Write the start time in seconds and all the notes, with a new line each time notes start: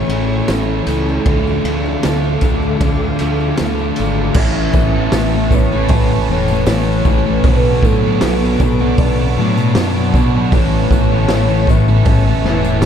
Already playing: A2 E3 A3 C#4 C#5 G#5 C#6
0.09 A1 A3 C#4 E4, ride
0.13 E3
0.48 A1 A2 E3 A3 C#4 E4 A4, snare, ride, tambourine
0.86 C#2 A3 C#4 E4, ride, tambourine
1.09 tambourine
1.26 D2 D3 F3 A3 D4 F4 A4 F5 D6, kick, ride
1.47 tambourine
1.64 D2 F3 A3 D4 F4, ride, tambourine
1.85 tambourine
2.03 D2 D3 A3 D4 F4, snare, ride, tambourine
2.24 tambourine
2.41 D2 A3, kick, ride, tambourine
2.62 tambourine
2.80 D2 D3 F3 A3, kick, ride, tambourine
2.85 D4
3.19 D2 F3 D4 F4, ride, tambourine
3.23 A3
3.40 tambourine
3.57 D2 D3 A3 A4, snare, ride, tambourine
3.62 D4 F4
3.79 tambourine
3.96 G#1 D4 F4, ride, tambourine
4.01 A3
4.34 A1 A2 E3 A3 C#4 E5 A5 C#6, kick, crash, tambourine
4.39 A4 B4
4.56 tambourine
4.73 A1 B3, kick, tambourine
4.94 E3 A3 C#4 A4
5.12 A1 A2 E3 E5, snare, open hi-hat, tambourine
5.16 E3 A3 C#4 A4
5.35 E3 A3 C#4 A4
5.51 A2 B3 C#5, muted overdriven electric guitar stroke, kick, tambourine
5.55 E3 A3
5.71 A3 C#4 A4, muted distorted electric guitar stroke, tambourine
5.88 A1 C#4, kick, open hi-hat, tambourine
5.93 B4
6.11 A3 C#4 A4
6.28 E1 A2 E3 A3 C#4 A4 C#5, tambourine
6.48 muted distorted electric guitar stroke, tambourine
6.66 A1 A2 E3 A3 C#4 A4, snare, open hi-hat, tambourine
6.71 E3 A3
6.86 A3 C#4 A4
7.05 A1 A2 E3 A3 C#4 C#5, kick, tambourine
7.09 A4
7.26 E3 A3 C#4 A4
7.43 B1 B2 F#3 B3 B4 D6, kick, open hi-hat, tambourine
7.48 D4 F#4
7.65 tambourine
7.82 A2 A3 A4, kick, tambourine
8.03 F#3 B3 D4 F#4
8.21 B1 B2 F#3 B3 D4 A4, snare, open hi-hat, tambourine
8.26 F#4
8.41 F#3 B3 D4 F#4, tambourine
8.46 B3
8.60 B1 B2 F#3 A3, muted overdriven electric guitar stroke, kick, tambourine
8.65 B3
8.79 D4 F#4, muted distorted electric guitar stroke, tambourine
8.84 B3
8.97 B1 D4, kick, open hi-hat, tambourine
9.19 B3 D4 F#4
9.37 A2 B2 F#3 B3 D4, tambourine
9.42 F#4
9.57 muted distorted electric guitar stroke, tambourine
9.75 F#2 B2 F#3 B3 D4, snare, open hi-hat, tambourine
9.79 F#4
9.97 B3 D4 F#4
10.14 B2 F#3, kick, tambourine
10.18 B3 D4 F#4
10.36 F#3 B3 D4 F#4
10.51 A1 A2 E3 B4 C#5 C#6, kick, open hi-hat
10.55 E3 A3 C#4 A4, tambourine
10.73 tambourine
10.90 A1 B3, kick, tambourine
11.12 E3 A3 C#4 A4
11.28 A1 A2 E3 A3, snare, open hi-hat, tambourine
11.32 C#4 A4
11.50 E3 A3 C#4 A4, tambourine
11.67 A2 E3 B3 E5, muted overdriven electric guitar stroke, kick, tambourine
11.72 A3
11.88 A3 C#4 A4, muted distorted electric guitar stroke, tambourine
12.05 A1 C#4, kick, open hi-hat, tambourine
12.27 A3 C#4 A4
12.45 E1 A2 E3, snare
12.49 A3 C#4 A4
12.64 muted distorted electric guitar stroke, tambourine
12.82 A1, snare, open hi-hat